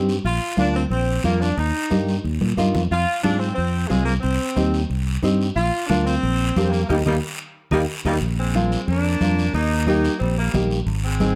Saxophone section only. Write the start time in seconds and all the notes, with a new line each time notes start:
0.26 F4
0.60 D4
0.76 C4
0.91 C4
1.25 A#3
1.40 D4
1.58 D#4
2.92 F4
3.23 D4
3.38 C4
3.54 C4
3.88 G#3
4.05 A#3
4.21 C4
5.56 F4
5.87 D4
6.05 C4
6.70 A#3
6.89 G3 A#3 D#4
7.06 G3 A#3 D#4
7.72 G3 A#3 D#4
8.06 G3 A#3 D#4
8.39 G#3 C4
8.88 A#3 D4
9.55 A#3 D#4
9.88 A#3 D#4
10.20 G3 C4
10.38 G3 A#3
11.04 G#3 C4